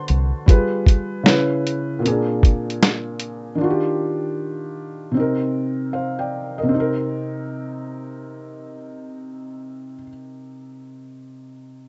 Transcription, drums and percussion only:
0.08 closed hi-hat medium
0.48 kick loud
0.48 closed hi-hat medium
0.86 kick medium
0.86 closed hi-hat medium
1.26 snare loud
1.26 closed hi-hat medium
1.67 closed hi-hat medium
2.06 closed hi-hat medium
2.43 kick medium
2.43 closed hi-hat soft
2.70 closed hi-hat soft
2.83 snare loud
2.83 closed hi-hat medium
3.20 closed hi-hat medium

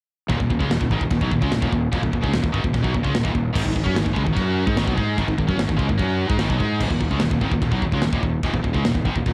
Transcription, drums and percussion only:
0.29 kick loud
0.29 china medium
0.40 kick medium
0.50 kick medium
0.61 kick medium
0.71 snare loud
0.71 china medium
0.81 kick loud
0.91 kick medium
1.01 kick medium
1.10 kick medium
1.10 china medium
1.21 kick medium
1.31 kick medium
1.42 kick medium
1.52 snare loud
1.52 china medium
1.62 kick loud
1.73 kick medium
1.92 kick loud
1.92 china medium
2.03 kick medium
2.13 kick medium
2.24 kick medium
2.34 snare loud
2.34 china medium
2.44 kick loud
2.54 kick medium
2.64 kick medium
2.74 kick medium
2.74 china medium
2.84 kick medium
2.94 kick medium
3.05 kick medium
3.15 snare loud
3.15 china medium
3.25 kick loud
3.35 kick medium
3.56 kick loud
3.56 crash loud
3.56 china medium
3.66 kick medium
3.76 kick medium
3.86 kick medium
3.96 snare loud
3.96 china medium
4.06 kick medium
4.16 kick medium
4.27 kick medium
4.37 kick medium
4.37 china medium
4.67 kick loud
4.77 snare loud
4.77 china medium
4.88 kick loud
4.98 kick medium
5.18 kick loud
5.18 china medium
5.28 kick medium
5.38 kick medium
5.49 kick medium
5.59 snare loud
5.59 china medium
5.69 kick loud
5.79 kick medium
5.89 kick medium
5.99 kick medium
5.99 china medium
6.30 kick loud
6.39 snare loud
6.39 china medium
6.50 kick loud
6.60 kick medium
6.81 kick loud
6.81 china medium
6.81 crash loud
6.91 kick medium
7.01 kick medium
7.11 kick medium
7.20 snare loud
7.20 china medium
7.31 kick loud
7.41 kick medium
7.52 kick medium
7.62 kick medium
7.62 china medium
7.72 kick medium
7.82 kick medium
7.92 kick medium
8.02 snare loud
8.02 china medium
8.13 kick loud
8.23 kick medium
8.43 kick loud
8.43 china medium
8.54 kick medium
8.64 kick medium
8.74 kick medium
8.85 snare loud
8.85 china medium
8.95 kick medium
9.05 kick medium
9.16 kick medium
9.26 kick medium
9.26 china medium

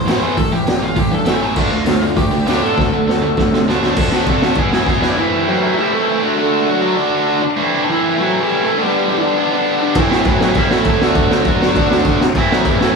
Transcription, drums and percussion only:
0.08 snare loud
0.08 open hi-hat medium
0.37 kick loud
0.37 open hi-hat medium
0.67 snare loud
0.67 open hi-hat medium
0.96 kick loud
0.96 open hi-hat medium
1.26 snare loud
1.26 open hi-hat medium
1.56 kick loud
1.56 crash loud
1.86 snare loud
1.86 open hi-hat medium
2.17 kick loud
2.17 open hi-hat medium
2.47 snare loud
2.47 open hi-hat medium
2.78 kick loud
2.78 snare medium
3.09 snare medium
3.37 kick loud
3.37 snare medium
3.53 snare medium
3.68 snare loud
3.82 snare medium
3.96 kick loud
3.96 crash loud
4.12 snare loud
4.26 kick loud
4.26 ride medium
4.42 snare loud
4.55 kick loud
4.55 ride medium
4.72 snare loud
4.86 kick loud
4.86 snare medium
5.02 snare medium
9.95 kick loud
9.95 crash medium
10.12 snare loud
10.25 kick loud
10.25 crash medium
10.41 snare loud
10.55 kick loud
10.55 crash medium
10.70 snare loud
10.85 kick loud
10.85 crash medium
11.01 snare loud
11.15 kick loud
11.15 crash medium
11.31 snare loud
11.45 kick loud
11.45 crash medium
11.62 snare loud
11.76 kick loud
11.76 crash medium
11.91 snare loud
12.05 kick loud
12.05 crash medium
12.21 snare loud
12.35 kick loud
12.35 crash medium
12.52 snare loud
12.65 kick loud
12.65 crash medium
12.81 snare loud

